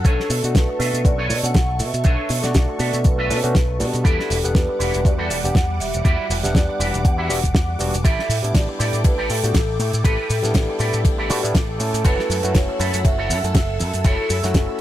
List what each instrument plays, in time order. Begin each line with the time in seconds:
Already playing: analog synth pad A4
0.04 picked electric bass B1, clean electric guitar D4 A4 B4 C#5, vibraphone A4, analog synth pad C#6, kick, closed hi-hat, shaker
0.20 snare
0.30 picked electric bass B2, open hi-hat, shaker
0.43 picked electric bass B2, tine electric piano A3 D4 F#4, closed hi-hat, shaker
0.55 picked electric bass B1, vibraphone B4, kick, snare, closed hi-hat, shaker
0.68 muted clean electric guitar stroke
0.79 picked electric bass B2, clean electric guitar D4 A4 B4 E5, open hi-hat, shaker
0.94 picked electric bass B2, closed hi-hat, shaker
1.04 picked electric bass B1, tine electric piano A3 C#4 D4 F#4, vibraphone D5, kick, closed hi-hat, shaker
1.18 clean electric guitar D4 A4 B4 C#5
1.29 picked electric bass B2, open hi-hat, shaker
1.43 picked electric bass B2, tine electric piano A3 C#4 D4 A4, vibraphone F#5, closed hi-hat, shaker
1.54 picked electric bass B1, muted clean electric guitar stroke, kick, snare, closed hi-hat, shaker
1.68 muted clean electric guitar stroke
1.79 picked electric bass B2, vibraphone E5, open hi-hat, shaker
1.94 picked electric bass B2, closed hi-hat, shaker
2.04 picked electric bass B1, clean electric guitar D4 A4 B4 C#5, kick, closed hi-hat, shaker
2.29 picked electric bass B2, open hi-hat, shaker
2.42 picked electric bass B2, tine electric piano A3 D4 F#4 D5, snare, closed hi-hat, shaker
2.54 picked electric bass B1, vibraphone D5, kick, snare, closed hi-hat, shaker
2.68 muted clean electric guitar stroke
2.79 picked electric bass B2, clean electric guitar D4 A4 B4 E5, open hi-hat, shaker
2.93 picked electric bass B2, closed hi-hat, shaker
3.04 picked electric bass B1, vibraphone B4, kick, closed hi-hat, shaker
3.18 clean electric guitar D4 A4 B4 E5
3.29 picked electric bass B2, tine electric piano A3 C#4 D4 A4, open hi-hat, shaker
3.43 picked electric bass B2, tine electric piano A3 C#4 D4 F#4, closed hi-hat, shaker
3.54 picked electric bass B1, muted clean electric guitar stroke, kick, snare, closed hi-hat, shaker
3.68 muted clean electric guitar stroke
3.79 picked electric bass B2, tine electric piano G3 B3 D4, open hi-hat, shaker
3.94 picked electric bass B2, closed hi-hat, shaker
4.04 picked electric bass E2, analog synth pad G3 F#5 D6, clean electric guitar E4 F#4 G4 D5, vibraphone A4, kick, closed hi-hat, shaker
4.20 snare
4.30 picked electric bass E1, open hi-hat, shaker
4.43 picked electric bass E1, tine electric piano G3 B3 D4 F#5, closed hi-hat, shaker
4.55 picked electric bass E2, vibraphone B4, kick, snare, closed hi-hat, shaker
4.68 muted clean electric guitar stroke
4.79 picked electric bass E1, clean electric guitar E4 F#4 G4 D5, open hi-hat, shaker
4.94 picked electric bass E1, closed hi-hat, shaker
5.05 picked electric bass E2, tine electric piano G3 B3 D4 F#4, vibraphone D5, kick, closed hi-hat, shaker
5.18 clean electric guitar E4 F#4 G4 A4
5.30 picked electric bass E1, open hi-hat, shaker
5.44 picked electric bass E1, tine electric piano G3 B3 D4 G4, vibraphone F#5, closed hi-hat, shaker
5.54 picked electric bass E2, muted clean electric guitar stroke, kick, snare, closed hi-hat, shaker
5.68 muted clean electric guitar stroke
5.80 picked electric bass E1, vibraphone E5, open hi-hat, shaker
5.94 picked electric bass E1, closed hi-hat, shaker
6.04 picked electric bass E2, clean electric guitar E4 F#4 G4 D5, kick, closed hi-hat, shaker
6.30 picked electric bass E1, open hi-hat, shaker
6.43 picked electric bass E1, tine electric piano G3 B3 D4 F#5, snare, closed hi-hat, shaker
6.55 picked electric bass E2, vibraphone D5, kick, snare, closed hi-hat, shaker
6.68 muted clean electric guitar stroke
6.79 picked electric bass E1, clean electric guitar E4 F#4 G4 D5, open hi-hat, shaker
6.94 picked electric bass E1, closed hi-hat, shaker
7.05 picked electric bass E2, vibraphone F#5, kick, closed hi-hat, shaker
7.18 clean electric guitar E4 F#4 G4 E5
7.29 picked electric bass E1, tine electric piano G3 B3 D4 F#4, open hi-hat, shaker
7.44 picked electric bass E1, kick, closed hi-hat, shaker
7.54 picked electric bass E2, muted clean electric guitar stroke, kick, snare, closed hi-hat, shaker
7.68 muted clean electric guitar stroke
7.79 picked electric bass E1, tine electric piano G3 B3 D4 F#4, open hi-hat, shaker
7.94 picked electric bass E1, closed hi-hat, shaker
8.04 picked electric bass A1, clean electric guitar E4 G4 A4 D5, analog synth pad A4 G5, vibraphone E5, kick, closed hi-hat, ride, shaker
8.19 snare
8.29 picked electric bass A2, open hi-hat, shaker
8.43 picked electric bass A2, tine electric piano G3 B3 D4 E4, closed hi-hat, shaker
8.54 picked electric bass A1, vibraphone D5, kick, snare, closed hi-hat, ride, shaker
8.68 muted clean electric guitar stroke
8.79 picked electric bass A2, clean electric guitar E4 G4 A4 D5, open hi-hat, shaker
8.93 picked electric bass A2, closed hi-hat, shaker
9.03 picked electric bass A1, tine electric piano G3 B3 D4 E4, vibraphone B4, kick, closed hi-hat, ride, shaker
9.18 clean electric guitar E4 G4 A4 D5
9.28 picked electric bass A2, vibraphone A4, open hi-hat, shaker
9.43 picked electric bass A2, tine electric piano G3 B3 D4 F#4, closed hi-hat, shaker
9.54 picked electric bass A1, muted clean electric guitar stroke, kick, snare, closed hi-hat, ride, shaker
9.68 muted clean electric guitar stroke
9.79 picked electric bass A2, open hi-hat, shaker
9.93 picked electric bass A2, closed hi-hat, shaker
10.04 picked electric bass A1, clean electric guitar E4 G4 A4 B4, vibraphone A4, kick, closed hi-hat, ride, shaker
10.30 picked electric bass A2, open hi-hat, shaker
10.43 picked electric bass A2, tine electric piano G3 B3 D4 E4, snare, closed hi-hat, shaker
10.54 picked electric bass A1, kick, snare, closed hi-hat, ride, shaker
10.68 muted clean electric guitar stroke
10.79 picked electric bass A2, clean electric guitar E4 G4 A4 D5, open hi-hat, shaker
10.93 picked electric bass A2, closed hi-hat, shaker
11.05 picked electric bass A1, kick, closed hi-hat, ride, shaker
11.18 clean electric guitar E4 G4 A4 D5
11.29 picked electric bass A2, tine electric piano G3 B3 D4 F#4, open hi-hat, shaker
11.43 picked electric bass A2, tine electric piano G3 B3 D4 E4, closed hi-hat, shaker
11.54 picked electric bass A1, muted clean electric guitar stroke, kick, snare, closed hi-hat, ride, shaker
11.68 muted clean electric guitar stroke
11.79 picked electric bass A2, tine electric piano A3 C#4 E4 A4, open hi-hat, shaker
11.94 picked electric bass A2, closed hi-hat, shaker
12.04 picked electric bass F#1, clean electric guitar E4 F#4 A4 C#5, vibraphone B4, analog synth pad F#5 E6, kick, closed hi-hat, ride, shaker
12.19 snare
12.30 picked electric bass F#2, open hi-hat, shaker
12.42 picked electric bass F#2, tine electric piano A3 C#4 E4 F#4, closed hi-hat, shaker
12.55 picked electric bass F#1, vibraphone C#5, kick, snare, closed hi-hat, ride, shaker
12.68 muted clean electric guitar stroke
12.79 picked electric bass F#2, clean electric guitar E4 F#4 A4 C#5, open hi-hat, shaker
12.94 picked electric bass F#2, closed hi-hat, shaker
13.04 picked electric bass F#1, tine electric piano A3 C#4 E4 F#4, vibraphone E5, kick, closed hi-hat, ride, shaker
13.18 clean electric guitar E4 F#4 A4 C#5
13.30 picked electric bass F#2, open hi-hat, shaker
13.43 picked electric bass F#2, tine electric piano A3 C#4 E4 A4, closed hi-hat, shaker
13.54 picked electric bass F#1, muted clean electric guitar stroke, kick, snare, closed hi-hat, ride, shaker
13.68 muted clean electric guitar stroke
13.79 picked electric bass F#2, open hi-hat, shaker
13.93 picked electric bass F#2, closed hi-hat, shaker
14.04 picked electric bass F#1, clean electric guitar E4 F#4 A4 C#5, vibraphone A4, analog synth pad E5, kick, closed hi-hat, ride, shaker
14.30 picked electric bass F#2, open hi-hat, shaker
14.43 picked electric bass F#2, tine electric piano A3 C#4 E4 F#4, snare, closed hi-hat, shaker
14.54 picked electric bass F#1, kick, snare, closed hi-hat, ride, shaker
14.68 muted clean electric guitar stroke